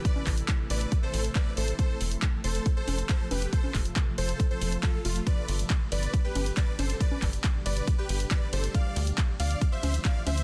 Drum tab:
RD |----------------|----------------|----------------|x-x-x-x-x-x-x-x-|
HH |x-oxx-oxx-oxx-ox|x-oxx-oxx-oxx-ox|x-oxx-oxx-oxx-ox|x-oxx-oxx-oxx-ox|
CP |--x-x-------x---|----x-------x---|--x-x-------x---|----x-------x---|
CG |-o--------------|----------o---o-|-o--------------|----------o---o-|
BD |o-o-o---o---o---|o---o---o---o---|o-o-o---o---o---|o---o---o---o---|

RD |x-x-x-x-x-x-x-x-|x-x-x-x-x-x-x-x-|
HH |x-oxx-oxx-oxx-ox|x-oxx-oxx-oxx-ox|
CP |--x-x-------x---|----x-------x---|
CG |-o--------------|----------o---o-|
BD |o-o-o---o---o---|o---o---o---o---|